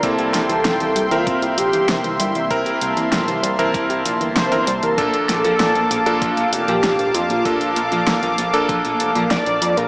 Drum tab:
HH |xxxxxxxxxxxxxxxx|xxxxxxxxxxxxxxxx|xxxxxxxxxxxxxxxx|xxxxxxxxxxxxxxxx|
SD |--o-o-------o---|----o-------o---|--o-o-------o---|----o-------o---|
BD |o-------o-------|o-------o-------|o-------o-------|o-------o-------|